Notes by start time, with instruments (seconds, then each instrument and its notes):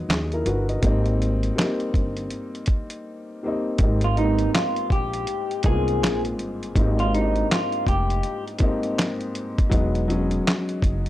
Already playing: upright piano F#3 G#3 B3 D#4
0.09 upright bass D#2, upright piano D#4 G#4, snare, clap, closed hi-hat
0.32 upright piano E4 A#4, closed hi-hat
0.46 upright bass G1, upright piano F#4 B4, closed hi-hat
0.69 upright piano A#4 D#5, closed hi-hat
0.82 upright bass G#1, upright piano G3 A#3 C4 D#4, kick, closed hi-hat
1.06 closed hi-hat
1.22 closed hi-hat
1.43 closed hi-hat
1.55 upright piano G3 A#3 C4, snare, clap, closed hi-hat
1.59 upright piano D#4
1.80 closed hi-hat
1.94 upright bass G1, kick, closed hi-hat
2.17 closed hi-hat
2.30 closed hi-hat
2.55 closed hi-hat
2.66 kick, closed hi-hat
2.90 closed hi-hat
3.43 upright piano G3 A#3 C4 D#4
3.78 upright bass G#1, upright piano G#2 G3 A#3 C4 D#4, kick, closed hi-hat
4.01 clean electric guitar F4, closed hi-hat
4.15 upright piano G#2 G3 A#3 B3 D#4, clean electric guitar D#4, closed hi-hat
4.25 upright piano C4
4.39 closed hi-hat
4.54 clean electric guitar F4, snare, clap, closed hi-hat
4.76 closed hi-hat
4.90 upright bass A#1, clean electric guitar G4, kick, closed hi-hat
5.13 closed hi-hat
5.27 closed hi-hat
5.51 closed hi-hat
5.63 upright bass C2, upright piano G#2 G#3 A#3 B3, clean electric guitar G#4, kick, closed hi-hat
5.67 upright piano F4
5.72 upright piano C4
5.88 closed hi-hat
6.02 upright bass A#1, snare, clap, closed hi-hat
6.25 closed hi-hat
6.39 upright bass G1, closed hi-hat
6.63 closed hi-hat
6.75 upright bass G#1, upright piano G#2 G3 A#3 C4 D#4, kick, closed hi-hat
6.99 clean electric guitar F4, closed hi-hat
7.13 upright piano G#2 G3 A#3 C4 D4, clean electric guitar D#4, closed hi-hat
7.23 upright piano D#4
7.36 closed hi-hat
7.51 clean electric guitar F4, snare, clap, closed hi-hat
7.72 closed hi-hat
7.87 upright bass F1, clean electric guitar G4, kick, closed hi-hat
8.10 closed hi-hat
8.23 closed hi-hat
8.48 closed hi-hat
8.59 upright piano G#2 G3 A#3 C4 D#4, kick, closed hi-hat
8.83 closed hi-hat
8.99 snare, clap, closed hi-hat
9.21 closed hi-hat
9.35 closed hi-hat
9.58 kick, closed hi-hat
9.69 upright bass E1, upright piano F#3 G#3 B3 D#4, kick, closed hi-hat
9.95 closed hi-hat
10.08 upright piano F#3 G#3 B3 C#4, closed hi-hat
10.31 closed hi-hat
10.47 snare, clap, closed hi-hat
10.69 closed hi-hat
10.82 upright bass F#1, kick, closed hi-hat
11.06 closed hi-hat